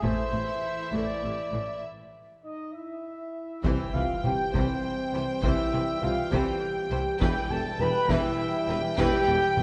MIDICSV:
0, 0, Header, 1, 13, 480
1, 0, Start_track
1, 0, Tempo, 601202
1, 24, Time_signature, 6, 3, 24, 8
1, 3864, Tempo, 591716
1, 7748, End_track
2, 0, Start_track
2, 0, Title_t, "Violin section"
2, 0, Program_c, 0, 48
2, 26, Note_on_c, 0, 76, 62
2, 1438, Note_off_c, 0, 76, 0
2, 2917, Note_on_c, 0, 79, 65
2, 5761, Note_off_c, 0, 79, 0
2, 5786, Note_on_c, 0, 79, 79
2, 7748, Note_off_c, 0, 79, 0
2, 7748, End_track
3, 0, Start_track
3, 0, Title_t, "Flute section"
3, 0, Program_c, 1, 73
3, 1952, Note_on_c, 1, 75, 56
3, 2175, Note_off_c, 1, 75, 0
3, 2182, Note_on_c, 1, 76, 56
3, 2897, Note_off_c, 1, 76, 0
3, 2906, Note_on_c, 1, 76, 73
3, 3142, Note_off_c, 1, 76, 0
3, 3147, Note_on_c, 1, 77, 73
3, 3387, Note_off_c, 1, 77, 0
3, 3395, Note_on_c, 1, 79, 66
3, 3628, Note_on_c, 1, 72, 66
3, 3630, Note_off_c, 1, 79, 0
3, 4333, Note_off_c, 1, 72, 0
3, 4355, Note_on_c, 1, 76, 73
3, 4822, Note_off_c, 1, 76, 0
3, 4836, Note_on_c, 1, 77, 67
3, 5073, Note_off_c, 1, 77, 0
3, 5078, Note_on_c, 1, 79, 67
3, 5784, Note_off_c, 1, 79, 0
3, 5793, Note_on_c, 1, 79, 95
3, 6028, Note_off_c, 1, 79, 0
3, 6031, Note_on_c, 1, 81, 94
3, 6266, Note_on_c, 1, 83, 87
3, 6270, Note_off_c, 1, 81, 0
3, 6499, Note_on_c, 1, 76, 95
3, 6501, Note_off_c, 1, 83, 0
3, 7221, Note_off_c, 1, 76, 0
3, 7226, Note_on_c, 1, 79, 116
3, 7718, Note_off_c, 1, 79, 0
3, 7748, End_track
4, 0, Start_track
4, 0, Title_t, "Trumpet section"
4, 0, Program_c, 2, 61
4, 25, Note_on_c, 2, 72, 83
4, 728, Note_off_c, 2, 72, 0
4, 742, Note_on_c, 2, 74, 73
4, 1451, Note_off_c, 2, 74, 0
4, 1948, Note_on_c, 2, 75, 61
4, 2172, Note_off_c, 2, 75, 0
4, 2188, Note_on_c, 2, 76, 52
4, 2896, Note_off_c, 2, 76, 0
4, 2911, Note_on_c, 2, 76, 62
4, 3144, Note_off_c, 2, 76, 0
4, 3147, Note_on_c, 2, 77, 70
4, 3385, Note_on_c, 2, 79, 69
4, 3387, Note_off_c, 2, 77, 0
4, 3621, Note_off_c, 2, 79, 0
4, 3624, Note_on_c, 2, 72, 66
4, 4331, Note_off_c, 2, 72, 0
4, 4341, Note_on_c, 2, 76, 79
4, 4824, Note_on_c, 2, 77, 71
4, 4825, Note_off_c, 2, 76, 0
4, 5065, Note_on_c, 2, 79, 70
4, 5067, Note_off_c, 2, 77, 0
4, 5776, Note_off_c, 2, 79, 0
4, 5786, Note_on_c, 2, 79, 84
4, 6024, Note_off_c, 2, 79, 0
4, 6030, Note_on_c, 2, 81, 84
4, 6269, Note_on_c, 2, 83, 86
4, 6270, Note_off_c, 2, 81, 0
4, 6508, Note_off_c, 2, 83, 0
4, 6508, Note_on_c, 2, 76, 79
4, 7088, Note_off_c, 2, 76, 0
4, 7225, Note_on_c, 2, 79, 109
4, 7748, Note_off_c, 2, 79, 0
4, 7748, End_track
5, 0, Start_track
5, 0, Title_t, "Violin section"
5, 0, Program_c, 3, 48
5, 24, Note_on_c, 3, 64, 63
5, 1437, Note_off_c, 3, 64, 0
5, 2906, Note_on_c, 3, 72, 60
5, 3130, Note_off_c, 3, 72, 0
5, 3155, Note_on_c, 3, 71, 44
5, 3219, Note_off_c, 3, 71, 0
5, 3384, Note_on_c, 3, 72, 50
5, 3448, Note_off_c, 3, 72, 0
5, 3622, Note_on_c, 3, 72, 61
5, 3846, Note_off_c, 3, 72, 0
5, 4117, Note_on_c, 3, 72, 65
5, 4182, Note_off_c, 3, 72, 0
5, 4338, Note_on_c, 3, 72, 74
5, 4566, Note_off_c, 3, 72, 0
5, 4583, Note_on_c, 3, 71, 54
5, 4648, Note_off_c, 3, 71, 0
5, 4822, Note_on_c, 3, 72, 57
5, 4887, Note_off_c, 3, 72, 0
5, 5061, Note_on_c, 3, 72, 74
5, 5289, Note_off_c, 3, 72, 0
5, 5541, Note_on_c, 3, 72, 79
5, 5606, Note_off_c, 3, 72, 0
5, 5792, Note_on_c, 3, 71, 84
5, 6015, Note_off_c, 3, 71, 0
5, 6043, Note_on_c, 3, 69, 59
5, 6108, Note_off_c, 3, 69, 0
5, 6278, Note_on_c, 3, 71, 66
5, 6343, Note_off_c, 3, 71, 0
5, 6518, Note_on_c, 3, 71, 84
5, 6736, Note_off_c, 3, 71, 0
5, 6995, Note_on_c, 3, 71, 80
5, 7060, Note_off_c, 3, 71, 0
5, 7223, Note_on_c, 3, 71, 99
5, 7447, Note_off_c, 3, 71, 0
5, 7466, Note_on_c, 3, 69, 58
5, 7531, Note_off_c, 3, 69, 0
5, 7704, Note_on_c, 3, 71, 71
5, 7748, Note_off_c, 3, 71, 0
5, 7748, End_track
6, 0, Start_track
6, 0, Title_t, "French horn section"
6, 0, Program_c, 4, 60
6, 24, Note_on_c, 4, 57, 68
6, 34, Note_on_c, 4, 64, 72
6, 1434, Note_off_c, 4, 57, 0
6, 1439, Note_off_c, 4, 64, 0
6, 1952, Note_on_c, 4, 63, 67
6, 2175, Note_off_c, 4, 63, 0
6, 2189, Note_on_c, 4, 64, 56
6, 2903, Note_off_c, 4, 64, 0
6, 2912, Note_on_c, 4, 64, 77
6, 3145, Note_off_c, 4, 64, 0
6, 3159, Note_on_c, 4, 65, 72
6, 3393, Note_off_c, 4, 65, 0
6, 3398, Note_on_c, 4, 67, 83
6, 3627, Note_on_c, 4, 60, 79
6, 3632, Note_off_c, 4, 67, 0
6, 4340, Note_on_c, 4, 64, 90
6, 4347, Note_off_c, 4, 60, 0
6, 4812, Note_on_c, 4, 65, 85
6, 4814, Note_off_c, 4, 64, 0
6, 5050, Note_on_c, 4, 67, 87
6, 5056, Note_off_c, 4, 65, 0
6, 5767, Note_off_c, 4, 67, 0
6, 5777, Note_on_c, 4, 67, 97
6, 6019, Note_off_c, 4, 67, 0
6, 6026, Note_on_c, 4, 69, 96
6, 6263, Note_off_c, 4, 69, 0
6, 6271, Note_on_c, 4, 71, 111
6, 6509, Note_off_c, 4, 71, 0
6, 6514, Note_on_c, 4, 64, 105
6, 7088, Note_off_c, 4, 64, 0
6, 7226, Note_on_c, 4, 67, 127
6, 7748, Note_off_c, 4, 67, 0
6, 7748, End_track
7, 0, Start_track
7, 0, Title_t, "Trombone section"
7, 0, Program_c, 5, 61
7, 17, Note_on_c, 5, 52, 61
7, 20, Note_off_c, 5, 52, 0
7, 20, Note_on_c, 5, 52, 70
7, 1432, Note_off_c, 5, 52, 0
7, 2908, Note_on_c, 5, 55, 59
7, 2911, Note_on_c, 5, 52, 59
7, 5756, Note_off_c, 5, 55, 0
7, 5758, Note_off_c, 5, 52, 0
7, 5786, Note_on_c, 5, 52, 69
7, 5786, Note_on_c, 5, 55, 80
7, 7748, Note_off_c, 5, 52, 0
7, 7748, Note_off_c, 5, 55, 0
7, 7748, End_track
8, 0, Start_track
8, 0, Title_t, "Viola section"
8, 0, Program_c, 6, 48
8, 19, Note_on_c, 6, 57, 66
8, 244, Note_off_c, 6, 57, 0
8, 257, Note_on_c, 6, 48, 42
8, 320, Note_off_c, 6, 48, 0
8, 733, Note_on_c, 6, 57, 59
8, 961, Note_off_c, 6, 57, 0
8, 980, Note_on_c, 6, 48, 47
8, 1044, Note_off_c, 6, 48, 0
8, 1225, Note_on_c, 6, 52, 45
8, 1289, Note_off_c, 6, 52, 0
8, 2908, Note_on_c, 6, 52, 77
8, 3131, Note_off_c, 6, 52, 0
8, 3141, Note_on_c, 6, 52, 45
8, 3205, Note_off_c, 6, 52, 0
8, 3384, Note_on_c, 6, 52, 42
8, 3448, Note_off_c, 6, 52, 0
8, 3632, Note_on_c, 6, 52, 64
8, 3851, Note_off_c, 6, 52, 0
8, 4106, Note_on_c, 6, 52, 63
8, 4171, Note_off_c, 6, 52, 0
8, 4353, Note_on_c, 6, 52, 74
8, 4574, Note_off_c, 6, 52, 0
8, 4589, Note_on_c, 6, 52, 48
8, 4654, Note_off_c, 6, 52, 0
8, 4826, Note_on_c, 6, 52, 58
8, 4891, Note_off_c, 6, 52, 0
8, 5068, Note_on_c, 6, 52, 79
8, 5293, Note_off_c, 6, 52, 0
8, 5554, Note_on_c, 6, 52, 61
8, 5619, Note_off_c, 6, 52, 0
8, 5786, Note_on_c, 6, 52, 86
8, 6012, Note_off_c, 6, 52, 0
8, 6037, Note_on_c, 6, 52, 53
8, 6102, Note_off_c, 6, 52, 0
8, 6274, Note_on_c, 6, 52, 57
8, 6339, Note_off_c, 6, 52, 0
8, 6506, Note_on_c, 6, 52, 89
8, 6729, Note_off_c, 6, 52, 0
8, 6990, Note_on_c, 6, 52, 75
8, 7055, Note_off_c, 6, 52, 0
8, 7223, Note_on_c, 6, 52, 109
8, 7447, Note_off_c, 6, 52, 0
8, 7461, Note_on_c, 6, 52, 57
8, 7526, Note_off_c, 6, 52, 0
8, 7699, Note_on_c, 6, 52, 56
8, 7748, Note_off_c, 6, 52, 0
8, 7748, End_track
9, 0, Start_track
9, 0, Title_t, "Cello section"
9, 0, Program_c, 7, 48
9, 23, Note_on_c, 7, 45, 69
9, 87, Note_off_c, 7, 45, 0
9, 258, Note_on_c, 7, 45, 45
9, 322, Note_off_c, 7, 45, 0
9, 734, Note_on_c, 7, 45, 58
9, 798, Note_off_c, 7, 45, 0
9, 975, Note_on_c, 7, 45, 38
9, 1039, Note_off_c, 7, 45, 0
9, 1218, Note_on_c, 7, 45, 41
9, 1282, Note_off_c, 7, 45, 0
9, 2908, Note_on_c, 7, 48, 62
9, 2972, Note_off_c, 7, 48, 0
9, 3153, Note_on_c, 7, 48, 48
9, 3217, Note_off_c, 7, 48, 0
9, 3391, Note_on_c, 7, 48, 47
9, 3455, Note_off_c, 7, 48, 0
9, 3630, Note_on_c, 7, 48, 72
9, 3693, Note_off_c, 7, 48, 0
9, 4108, Note_on_c, 7, 48, 51
9, 4173, Note_off_c, 7, 48, 0
9, 4348, Note_on_c, 7, 48, 62
9, 4413, Note_off_c, 7, 48, 0
9, 4588, Note_on_c, 7, 48, 59
9, 4653, Note_off_c, 7, 48, 0
9, 4831, Note_on_c, 7, 48, 58
9, 4896, Note_off_c, 7, 48, 0
9, 5067, Note_on_c, 7, 48, 78
9, 5132, Note_off_c, 7, 48, 0
9, 5548, Note_on_c, 7, 48, 62
9, 5613, Note_off_c, 7, 48, 0
9, 5786, Note_on_c, 7, 40, 87
9, 5850, Note_off_c, 7, 40, 0
9, 6029, Note_on_c, 7, 40, 59
9, 6094, Note_off_c, 7, 40, 0
9, 6270, Note_on_c, 7, 40, 68
9, 6335, Note_off_c, 7, 40, 0
9, 6503, Note_on_c, 7, 40, 91
9, 6568, Note_off_c, 7, 40, 0
9, 6983, Note_on_c, 7, 40, 68
9, 7048, Note_off_c, 7, 40, 0
9, 7219, Note_on_c, 7, 40, 89
9, 7284, Note_off_c, 7, 40, 0
9, 7457, Note_on_c, 7, 40, 72
9, 7522, Note_off_c, 7, 40, 0
9, 7700, Note_on_c, 7, 40, 64
9, 7748, Note_off_c, 7, 40, 0
9, 7748, End_track
10, 0, Start_track
10, 0, Title_t, "Tuba"
10, 0, Program_c, 8, 58
10, 2913, Note_on_c, 8, 36, 74
10, 3008, Note_off_c, 8, 36, 0
10, 3151, Note_on_c, 8, 36, 51
10, 3247, Note_off_c, 8, 36, 0
10, 3388, Note_on_c, 8, 36, 46
10, 3484, Note_off_c, 8, 36, 0
10, 3624, Note_on_c, 8, 36, 71
10, 3720, Note_off_c, 8, 36, 0
10, 4105, Note_on_c, 8, 36, 49
10, 4201, Note_off_c, 8, 36, 0
10, 4340, Note_on_c, 8, 36, 84
10, 4438, Note_off_c, 8, 36, 0
10, 4585, Note_on_c, 8, 36, 50
10, 4682, Note_off_c, 8, 36, 0
10, 4823, Note_on_c, 8, 36, 54
10, 4920, Note_off_c, 8, 36, 0
10, 5061, Note_on_c, 8, 36, 71
10, 5159, Note_off_c, 8, 36, 0
10, 5549, Note_on_c, 8, 36, 53
10, 5646, Note_off_c, 8, 36, 0
10, 5789, Note_on_c, 8, 28, 88
10, 5886, Note_off_c, 8, 28, 0
10, 6028, Note_on_c, 8, 28, 56
10, 6125, Note_off_c, 8, 28, 0
10, 6270, Note_on_c, 8, 28, 61
10, 6365, Note_off_c, 8, 28, 0
10, 6504, Note_on_c, 8, 28, 79
10, 6600, Note_off_c, 8, 28, 0
10, 6986, Note_on_c, 8, 28, 60
10, 7082, Note_off_c, 8, 28, 0
10, 7227, Note_on_c, 8, 28, 101
10, 7322, Note_off_c, 8, 28, 0
10, 7462, Note_on_c, 8, 28, 71
10, 7558, Note_off_c, 8, 28, 0
10, 7703, Note_on_c, 8, 28, 67
10, 7748, Note_off_c, 8, 28, 0
10, 7748, End_track
11, 0, Start_track
11, 0, Title_t, "Double bass section"
11, 0, Program_c, 10, 48
11, 23, Note_on_c, 10, 33, 59
11, 87, Note_off_c, 10, 33, 0
11, 264, Note_on_c, 10, 33, 48
11, 328, Note_off_c, 10, 33, 0
11, 739, Note_on_c, 10, 33, 61
11, 803, Note_off_c, 10, 33, 0
11, 985, Note_on_c, 10, 33, 41
11, 1049, Note_off_c, 10, 33, 0
11, 1228, Note_on_c, 10, 33, 40
11, 1292, Note_off_c, 10, 33, 0
11, 2910, Note_on_c, 10, 36, 65
11, 2974, Note_off_c, 10, 36, 0
11, 3145, Note_on_c, 10, 36, 57
11, 3209, Note_off_c, 10, 36, 0
11, 3385, Note_on_c, 10, 36, 47
11, 3449, Note_off_c, 10, 36, 0
11, 3621, Note_on_c, 10, 36, 75
11, 3685, Note_off_c, 10, 36, 0
11, 4095, Note_on_c, 10, 36, 52
11, 4160, Note_off_c, 10, 36, 0
11, 4340, Note_on_c, 10, 36, 65
11, 4405, Note_off_c, 10, 36, 0
11, 4580, Note_on_c, 10, 36, 60
11, 4645, Note_off_c, 10, 36, 0
11, 4824, Note_on_c, 10, 36, 53
11, 4889, Note_off_c, 10, 36, 0
11, 5059, Note_on_c, 10, 36, 79
11, 5123, Note_off_c, 10, 36, 0
11, 5541, Note_on_c, 10, 36, 53
11, 5606, Note_off_c, 10, 36, 0
11, 5789, Note_on_c, 10, 28, 79
11, 5854, Note_off_c, 10, 28, 0
11, 6026, Note_on_c, 10, 28, 65
11, 6091, Note_off_c, 10, 28, 0
11, 6268, Note_on_c, 10, 28, 63
11, 6333, Note_off_c, 10, 28, 0
11, 6509, Note_on_c, 10, 28, 90
11, 6574, Note_off_c, 10, 28, 0
11, 6988, Note_on_c, 10, 28, 68
11, 7053, Note_off_c, 10, 28, 0
11, 7227, Note_on_c, 10, 28, 78
11, 7292, Note_off_c, 10, 28, 0
11, 7463, Note_on_c, 10, 28, 73
11, 7528, Note_off_c, 10, 28, 0
11, 7708, Note_on_c, 10, 28, 61
11, 7748, Note_off_c, 10, 28, 0
11, 7748, End_track
12, 0, Start_track
12, 0, Title_t, "Impact"
12, 0, Program_c, 11, 103
12, 2911, Note_on_c, 11, 60, 63
12, 4347, Note_off_c, 11, 60, 0
12, 7748, End_track
13, 0, Start_track
13, 0, Title_t, "Taiko and cinematic ensemble drums"
13, 27, Note_on_c, 9, 41, 84
13, 107, Note_off_c, 9, 41, 0
13, 742, Note_on_c, 9, 41, 64
13, 822, Note_off_c, 9, 41, 0
13, 2908, Note_on_c, 9, 41, 92
13, 2988, Note_off_c, 9, 41, 0
13, 3385, Note_on_c, 9, 47, 51
13, 3465, Note_off_c, 9, 47, 0
13, 3628, Note_on_c, 9, 41, 71
13, 3707, Note_off_c, 9, 41, 0
13, 4346, Note_on_c, 9, 41, 93
13, 4427, Note_off_c, 9, 41, 0
13, 4831, Note_on_c, 9, 47, 58
13, 4912, Note_off_c, 9, 47, 0
13, 5071, Note_on_c, 9, 41, 81
13, 5152, Note_off_c, 9, 41, 0
13, 5787, Note_on_c, 9, 41, 91
13, 5869, Note_off_c, 9, 41, 0
13, 6263, Note_on_c, 9, 47, 61
13, 6344, Note_off_c, 9, 47, 0
13, 6500, Note_on_c, 9, 41, 86
13, 6581, Note_off_c, 9, 41, 0
13, 7221, Note_on_c, 9, 41, 94
13, 7302, Note_off_c, 9, 41, 0
13, 7701, Note_on_c, 9, 47, 65
13, 7748, Note_off_c, 9, 47, 0
13, 7748, End_track
0, 0, End_of_file